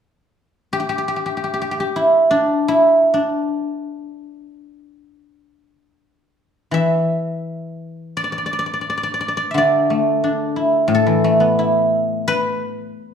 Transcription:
0.73 0.79 G4 medium
0.80 0.89 G4 soft
0.89 0.98 G4 soft
0.98 1.08 G4 soft
1.08 1.16 G4 soft
1.16 1.25 G4 soft
1.26 1.36 G4 soft
1.37 1.43 G4 soft
1.44 1.53 G4 soft
1.54 1.61 G4 soft
1.62 1.71 G4 soft
1.71 1.80 G4 soft
1.80 4.16 G4 medium
1.96 2.68 E4 soft
2.31 3.13 D4 medium
2.68 5.29 E4 medium
3.14 5.94 D4 soft
6.71 8.85 E3 soft
6.71 8.46 E5 medium
8.17 8.23 D5 medium
8.24 8.32 D5 soft
8.32 8.38 D5 soft
8.38 8.45 D5 soft
8.46 8.52 D5 soft
8.53 8.58 D5 soft
8.59 8.66 D5 medium
8.66 8.73 D5 soft
8.74 8.81 D5 soft
8.81 8.89 D5 soft
8.90 8.97 D5 soft
8.97 9.03 D5 soft
9.03 9.13 D5 medium
9.14 9.20 D5 soft
9.21 9.28 D5 soft
9.28 9.37 D5 soft
9.37 9.57 D5 medium
9.51 11.57 D3 soft
9.51 11.23 E5 soft
9.58 11.42 D5 medium
9.90 11.23 A3 soft
10.24 11.58 D4 soft
10.56 11.58 E4 soft
10.88 12.90 A2 medium
10.95 13.14 A4 medium
11.06 12.41 E3 soft
11.24 12.58 A3 soft
11.40 12.74 B3 soft
11.59 12.91 E4 soft
12.28 13.14 B4 medium

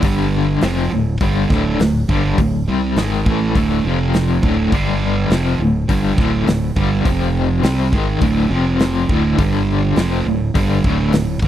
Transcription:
0.02 0.58 G1 medium
0.02 0.62 G2 loud
0.02 0.62 D3 loud
0.02 0.62 G3 loud
0.02 kick loud
0.02 open hi-hat medium
0.61 0.90 F1 medium
0.61 0.91 F2 medium
0.61 0.91 C3 medium
0.61 0.91 F3 loud
0.61 snare loud
0.61 open hi-hat medium
0.93 1.19 D1 medium
0.93 1.16 D2 medium
0.93 1.16 A2 medium
1.20 1.48 G1 loud
1.20 1.50 G2 medium
1.20 1.50 D3 medium
1.20 1.50 G3 medium
1.20 kick loud
1.20 open hi-hat soft
1.50 1.78 D1 loud
1.50 1.79 D2 medium
1.50 1.79 A2 medium
1.50 1.80 D3 loud
1.50 kick loud
1.50 snare soft
1.80 2.07 D1 medium
1.80 2.04 D2 medium
1.80 2.04 A2 medium
1.80 snare loud
1.80 open hi-hat medium
2.09 2.36 G1 medium
2.09 2.38 G2 medium
2.09 2.38 D3 medium
2.09 2.38 G3 loud
2.09 kick loud
2.38 2.65 D1 medium
2.38 2.62 D2 medium
2.38 2.62 A2 medium
2.38 kick medium
2.38 open hi-hat medium
2.68 2.95 C2 medium
2.68 2.96 C3 medium
2.68 2.97 G3 medium
2.68 2.97 C4 medium
2.96 3.24 G#1 medium
2.96 3.26 G#2 medium
2.96 3.26 D#3 medium
2.96 3.26 G#3 loud
2.96 snare loud
2.96 open hi-hat soft
3.26 3.53 A1 medium
3.26 3.55 A2 medium
3.26 3.55 E3 medium
3.26 3.56 A3 loud
3.26 kick loud
3.55 3.83 D1 medium
3.55 3.84 D2 medium
3.55 3.84 A2 medium
3.55 3.84 D3 medium
3.55 kick medium
3.55 open hi-hat medium
3.85 4.39 F1 medium
3.85 4.43 F2 medium
3.85 4.43 C3 medium
3.85 4.43 F3 loud
4.14 snare loud
4.14 open hi-hat medium
4.43 4.70 D1 medium
4.43 4.72 D2 medium
4.43 4.72 A2 loud
4.43 4.72 D3 medium
4.43 kick loud
4.72 5.27 G1 loud
4.72 5.30 G2 medium
4.72 5.30 D3 medium
4.72 5.31 G3 loud
4.72 kick loud
4.72 open hi-hat medium
5.30 5.57 F1 medium
5.30 5.60 F2 medium
5.30 5.60 C3 medium
5.30 5.60 F3 medium
5.30 snare loud
5.30 open hi-hat medium
5.59 5.87 D1 medium
5.59 5.84 D2 medium
5.59 5.84 A2 medium
5.89 6.17 G1 medium
5.89 6.17 G2 medium
5.89 6.18 D3 medium
5.89 6.18 G3 loud
5.89 kick loud
5.89 open hi-hat medium
6.18 6.45 D1 loud
6.18 6.46 D2 medium
6.18 6.47 A2 medium
6.18 6.47 D3 medium
6.18 kick loud
6.18 snare soft
6.47 6.74 D1 medium
6.47 6.71 D2 medium
6.47 6.71 A2 medium
6.47 snare loud
6.47 open hi-hat medium
6.76 7.04 G1 medium
6.76 7.05 G2 medium
6.76 7.05 D3 medium
6.76 7.05 G3 loud
6.76 kick medium
7.05 7.60 F1 medium
7.05 7.63 F2 medium
7.05 7.62 C3 loud
7.05 7.63 F3 loud
7.05 kick loud
7.05 open hi-hat medium
7.63 7.91 C2 medium
7.63 7.91 C3 medium
7.63 7.92 G3 loud
7.63 7.93 C4 medium
7.63 snare loud
7.63 open hi-hat medium
7.92 8.20 G#1 medium
7.92 8.21 G#2 medium
7.92 8.21 D#3 medium
7.92 8.21 G#3 loud
7.92 kick loud
8.21 8.49 D1 medium
8.21 8.49 D2 medium
8.21 8.50 A2 loud
8.21 8.50 D3 loud
8.21 kick loud
8.21 open hi-hat medium
8.50 9.05 F1 loud
8.50 9.08 F2 medium
8.50 9.08 C3 loud
8.50 9.09 F3 loud
8.79 snare loud
8.79 open hi-hat medium
9.09 9.36 D1 loud
9.09 9.38 D2 medium
9.09 9.38 A2 loud
9.09 9.38 D3 loud
9.09 kick loud
9.38 9.93 G1 loud
9.38 9.96 G2 medium
9.38 9.96 D3 medium
9.38 9.96 G3 loud
9.38 kick loud
9.38 open hi-hat medium
9.96 10.24 F1 medium
9.96 10.25 F2 medium
9.96 10.26 C3 medium
9.96 10.26 F3 loud
9.96 snare loud
9.96 open hi-hat medium
10.26 10.53 D1 medium
10.26 10.50 D2 medium
10.26 10.50 A2 medium
10.54 10.82 G1 loud
10.54 10.83 G2 medium
10.54 10.84 D3 medium
10.54 10.84 G3 loud
10.54 kick loud
10.54 open hi-hat medium
10.83 11.12 D1 loud
10.83 11.11 D2 medium
10.83 11.12 A2 medium
10.83 11.13 D3 medium
10.83 kick loud
11.13 11.41 D1 medium
11.13 11.36 D2 medium
11.13 11.37 A2 medium
11.13 snare loud
11.13 open hi-hat medium
11.42 11.48 G1 medium
11.42 11.48 G2 medium
11.42 11.48 D3 medium
11.42 11.48 G3 medium
11.42 kick loud

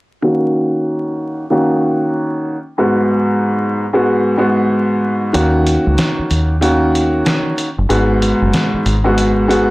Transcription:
0.22 1.43 D#3 medium
0.22 1.43 A#3 medium
0.22 1.43 C#4 medium
0.22 1.43 F#4 loud
1.50 2.55 D#3 loud
1.50 2.55 A#3 medium
1.50 2.56 C#4 medium
1.50 2.56 F#4 loud
2.78 3.83 G#2 medium
2.78 3.83 G#3 medium
2.78 3.83 B3 medium
2.78 3.84 F#4 loud
3.93 4.35 G#2 medium
3.93 4.35 G#3 medium
3.93 4.35 B3 medium
3.93 4.36 F#4 medium
4.37 5.28 G#2 medium
4.37 5.28 G#3 medium
4.37 5.28 B3 medium
4.37 5.29 F#4 loud
5.33 5.77 D#2 loud
5.33 6.54 D#3 medium
5.33 6.54 A#3 medium
5.33 6.54 C#4 medium
5.33 6.54 F#4 loud
5.33 closed hi-hat medium
5.67 closed hi-hat medium
5.87 5.96 C#2 medium
5.98 snare loud
5.98 closed hi-hat medium
6.19 muted fingered electric bass stroke soft
6.31 7.22 D#2 medium
6.31 closed hi-hat medium
6.61 7.66 D#3 loud
6.61 7.66 A#3 medium
6.61 7.66 C#4 medium
6.61 7.67 F#4 loud
6.61 closed hi-hat loud
6.95 closed hi-hat medium
7.26 snare loud
7.26 closed hi-hat medium
7.58 closed hi-hat medium
7.78 7.88 F#1 medium
7.89 8.32 G#1 loud
7.89 8.94 G#2 loud
7.89 8.94 G#3 medium
7.89 8.94 B3 medium
7.89 8.94 F#4 loud
7.89 closed hi-hat medium
8.22 closed hi-hat medium
8.42 8.51 F#1 medium
8.53 snare loud
8.53 closed hi-hat medium
8.74 muted fingered electric bass stroke soft
8.86 9.71 G#1 medium
8.86 closed hi-hat medium
9.04 9.46 G#2 medium
9.04 9.46 G#3 medium
9.04 9.46 B3 medium
9.04 9.46 F#4 loud
9.18 closed hi-hat loud
9.48 9.71 G#2 medium
9.48 9.71 G#3 medium
9.48 9.71 B3 medium
9.48 9.71 F#4 loud
9.48 closed hi-hat medium

